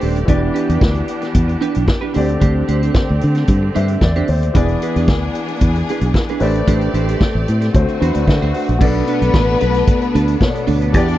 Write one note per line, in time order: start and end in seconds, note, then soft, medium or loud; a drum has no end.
0.00 0.22 D#1 medium
0.00 0.27 A3 medium
0.00 0.28 A3 medium
0.00 0.27 C4 medium
0.00 0.19 D4 medium
0.00 0.28 G4 medium
0.00 4.51 G4 medium
0.00 0.17 G4 medium
0.00 0.27 A4 medium
0.00 0.28 B4 soft
0.00 0.28 C5 medium
0.00 0.16 C5 medium
0.00 0.27 D5 medium
0.00 open hi-hat medium
0.16 muted clean electric guitar stroke soft
0.16 closed hi-hat soft
0.25 0.49 E1 loud
0.25 2.09 E3 medium
0.25 2.13 E3 medium
0.25 2.10 B3 medium
0.25 2.13 B3 medium
0.25 2.13 D4 medium
0.25 0.50 D4 medium
0.25 0.35 F#4 medium
0.25 2.11 D5 medium
0.25 kick loud
0.25 closed hi-hat medium
0.30 0.41 G4 medium
0.30 0.40 B4 medium
0.34 2.14 G4 medium
0.41 muted clean electric guitar stroke soft
0.53 0.68 D4 medium
0.53 0.68 G4 medium
0.53 0.67 B4 medium
0.53 closed hi-hat medium
0.68 0.79 E2 medium
0.68 0.81 D4 soft
0.68 0.81 G4 medium
0.68 0.82 B4 medium
0.68 closed hi-hat soft
0.81 1.02 D2 medium
0.81 kick loud
0.81 snare loud
0.95 muted clean electric guitar stroke soft
0.95 closed hi-hat soft
1.08 closed hi-hat medium
1.22 muted clean electric guitar stroke medium
1.22 snare soft
1.22 closed hi-hat soft
1.34 1.55 E2 medium
1.34 kick loud
1.34 closed hi-hat medium
1.48 muted clean electric guitar stroke medium
1.48 closed hi-hat soft
1.61 1.83 D4 medium
1.61 1.74 G4 medium
1.61 1.73 B4 medium
1.61 closed hi-hat medium
1.75 1.86 B1 medium
1.75 muted clean electric guitar stroke soft
1.75 closed hi-hat medium
1.88 kick loud
1.88 snare loud
2.01 2.13 D4 medium
2.01 2.13 G4 medium
2.01 2.15 B4 medium
2.14 2.36 D2 medium
2.14 4.23 D3 medium
2.14 4.53 D3 medium
2.14 4.53 A3 medium
2.14 4.24 C4 medium
2.14 4.53 C4 medium
2.14 2.31 D4 medium
2.14 2.28 G4 medium
2.14 4.24 G4 medium
2.14 2.27 C5 medium
2.14 4.01 D5 medium
2.14 open hi-hat medium
2.28 muted clean electric guitar stroke soft
2.28 closed hi-hat soft
2.41 2.62 D2 loud
2.41 2.62 D4 medium
2.41 2.55 G4 medium
2.41 2.55 C5 medium
2.41 kick loud
2.41 closed hi-hat medium
2.56 muted clean electric guitar stroke soft
2.68 2.88 D2 medium
2.68 2.82 D4 medium
2.68 2.81 G4 medium
2.68 2.81 C5 medium
2.68 closed hi-hat medium
2.82 2.94 D4 medium
2.82 2.94 G4 medium
2.82 2.95 C5 medium
2.82 closed hi-hat medium
2.94 kick loud
2.94 snare loud
3.09 3.19 D2 medium
3.09 muted clean electric guitar stroke soft
3.21 3.43 D3 loud
3.21 closed hi-hat medium
3.35 muted clean electric guitar stroke soft
3.35 snare soft
3.35 closed hi-hat soft
3.47 3.68 G2 loud
3.47 kick loud
3.47 closed hi-hat medium
3.63 muted clean electric guitar stroke soft
3.75 3.96 G2 loud
3.75 3.96 D4 medium
3.75 3.90 G4 medium
3.75 3.89 C5 medium
3.75 4.00 E5 medium
3.75 closed hi-hat medium
3.88 muted clean electric guitar stroke soft
3.88 closed hi-hat medium
4.01 4.21 E2 medium
4.01 4.27 D5 medium
4.01 muted clean electric guitar stroke soft
4.01 kick loud
4.01 snare medium
4.16 4.28 D4 medium
4.16 4.28 G4 medium
4.16 4.29 C5 medium
4.16 closed hi-hat soft
4.28 4.49 D#2 medium
4.28 4.53 C5 medium
4.28 muted clean electric guitar stroke soft
4.28 open hi-hat medium
4.43 muted clean electric guitar stroke soft
4.43 closed hi-hat soft
4.54 4.75 E1 loud
4.54 6.37 E3 medium
4.54 6.39 E3 medium
4.54 6.37 B3 medium
4.54 6.39 B3 medium
4.54 6.39 D4 medium
4.54 4.76 D4 medium
4.54 6.39 G#4 medium
4.54 6.38 G#4 medium
4.54 4.69 G#4 medium
4.54 4.69 B4 medium
4.54 6.38 D5 medium
4.54 kick loud
4.54 closed hi-hat medium
4.68 muted clean electric guitar stroke soft
4.68 closed hi-hat soft
4.82 4.97 D4 medium
4.82 4.96 G#4 medium
4.82 4.96 B4 medium
4.82 closed hi-hat medium
4.96 5.08 E2 medium
4.96 5.09 D4 soft
4.96 5.10 G#4 medium
4.96 5.10 B4 medium
4.96 closed hi-hat soft
5.08 5.28 D2 medium
5.08 muted clean electric guitar stroke soft
5.08 kick loud
5.08 snare loud
5.25 muted clean electric guitar stroke soft
5.35 closed hi-hat medium
5.48 muted clean electric guitar stroke soft
5.48 closed hi-hat soft
5.61 5.81 E2 medium
5.61 kick loud
5.61 closed hi-hat medium
5.76 muted clean electric guitar stroke medium
5.76 closed hi-hat soft
5.89 6.10 D4 medium
5.89 6.04 G#4 medium
5.89 6.03 B4 medium
5.89 closed hi-hat medium
6.01 6.11 B1 medium
6.01 muted clean electric guitar stroke soft
6.01 closed hi-hat medium
6.14 muted clean electric guitar stroke soft
6.14 kick loud
6.14 snare medium
6.29 6.41 D4 medium
6.29 6.43 G#4 medium
6.29 6.43 B4 medium
6.29 closed hi-hat soft
6.40 6.61 A1 medium
6.40 7.71 A3 medium
6.40 8.79 A3 medium
6.40 7.71 C4 medium
6.40 6.59 D4 medium
6.40 7.71 G4 medium
6.40 7.74 G4 medium
6.40 6.55 G4 medium
6.40 7.74 A4 medium
6.40 7.71 B4 medium
6.40 7.72 C5 medium
6.40 6.54 C5 medium
6.40 7.72 D5 medium
6.40 7.74 D5 medium
6.40 open hi-hat medium
6.55 muted clean electric guitar stroke soft
6.55 closed hi-hat soft
6.68 6.88 A1 loud
6.68 6.89 D4 medium
6.68 6.81 G4 medium
6.68 6.81 C5 medium
6.68 kick loud
6.68 closed hi-hat medium
6.81 muted clean electric guitar stroke soft
6.81 closed hi-hat soft
6.94 7.14 A1 loud
6.94 7.08 D4 medium
6.94 7.07 G4 medium
6.94 7.07 C5 medium
6.94 closed hi-hat medium
7.08 7.20 D4 medium
7.08 7.20 G4 medium
7.08 7.21 C5 medium
7.08 closed hi-hat medium
7.21 muted clean electric guitar stroke soft
7.21 kick loud
7.21 snare loud
7.34 7.44 A1 medium
7.34 muted clean electric guitar stroke soft
7.48 7.69 A2 loud
7.48 closed hi-hat medium
7.61 muted clean electric guitar stroke medium
7.61 snare soft
7.61 closed hi-hat soft
7.72 7.85 D2 loud
7.72 8.79 D3 medium
7.72 8.78 D3 medium
7.72 8.78 A3 medium
7.72 8.79 C4 medium
7.72 8.79 F#4 medium
7.72 8.79 C5 medium
7.72 kick loud
7.72 closed hi-hat medium
7.89 muted clean electric guitar stroke soft
7.89 closed hi-hat soft
8.01 8.12 E2 medium
8.01 8.22 D4 medium
8.01 8.15 F#4 medium
8.01 8.14 B4 medium
8.01 8.14 C5 medium
8.01 closed hi-hat medium
8.14 8.25 D2 medium
8.14 8.26 D5 medium
8.14 muted clean electric guitar stroke soft
8.14 closed hi-hat medium
8.28 8.38 D3 medium
8.28 8.52 E5 medium
8.28 muted clean electric guitar stroke soft
8.28 kick loud
8.28 snare medium
8.42 8.52 D2 medium
8.42 8.53 D4 medium
8.42 8.54 F#4 medium
8.42 8.54 C5 medium
8.42 closed hi-hat soft
8.53 8.71 D4 medium
8.53 8.68 F#4 medium
8.53 8.67 C5 medium
8.53 8.78 F#5 medium
8.53 open hi-hat medium
8.68 8.78 A#1 medium
8.68 muted clean electric guitar stroke soft
8.68 closed hi-hat soft
8.78 9.01 B1 loud
8.78 10.36 B2 medium
8.78 10.92 A3 medium
8.78 10.37 B3 medium
8.78 10.64 B3 loud
8.78 11.18 B3 medium
8.78 9.02 D4 medium
8.78 10.92 D4 medium
8.78 10.37 A4 medium
8.78 8.95 A4 medium
8.78 10.63 B4 loud
8.78 8.94 B4 medium
8.78 10.38 D5 medium
8.78 kick loud
8.78 crash loud
8.95 muted clean electric guitar stroke medium
9.07 9.22 D4 medium
9.07 9.22 A4 medium
9.07 9.21 B4 medium
9.07 closed hi-hat medium
9.22 9.31 B1 loud
9.22 9.38 D4 medium
9.22 9.38 A4 medium
9.22 9.38 B4 medium
9.22 closed hi-hat medium
9.34 9.54 A1 medium
9.34 kick loud
9.34 snare loud
9.48 muted clean electric guitar stroke soft
9.61 9.82 B1 loud
9.61 9.82 D4 medium
9.61 9.75 A4 medium
9.61 9.74 B4 medium
9.61 closed hi-hat medium
9.74 muted clean electric guitar stroke medium
9.74 snare soft
9.74 closed hi-hat soft
9.87 kick loud
9.87 closed hi-hat medium
10.01 muted clean electric guitar stroke soft
10.01 closed hi-hat soft
10.14 10.35 D2 loud
10.14 10.36 D4 medium
10.14 10.28 A4 medium
10.14 10.27 B4 loud
10.14 closed hi-hat medium
10.28 muted clean electric guitar stroke soft
10.28 closed hi-hat medium
10.40 10.94 B2 medium
10.40 10.92 B3 soft
10.40 10.94 A4 soft
10.40 10.48 C#5 medium
10.40 muted clean electric guitar stroke soft
10.40 kick loud
10.40 snare loud
10.48 10.95 D5 medium
10.55 muted clean electric guitar stroke medium
10.55 closed hi-hat soft
10.67 10.94 D2 medium
10.67 10.81 D4 medium
10.67 10.81 A4 medium
10.67 10.80 B4 medium
10.67 open hi-hat medium
10.82 10.93 D4 medium
10.82 10.94 A4 medium
10.82 10.94 B4 medium
10.82 closed hi-hat medium
10.93 11.18 E2 loud
10.93 11.18 E3 medium
10.93 11.18 B3 medium
10.93 11.18 D4 medium
10.93 11.16 D4 medium
10.93 11.18 G4 loud
10.93 11.07 G4 loud
10.93 11.18 G4 medium
10.93 11.07 B4 loud
10.93 11.18 D5 medium
10.93 kick loud
10.93 closed hi-hat medium
11.08 muted clean electric guitar stroke medium
11.08 closed hi-hat soft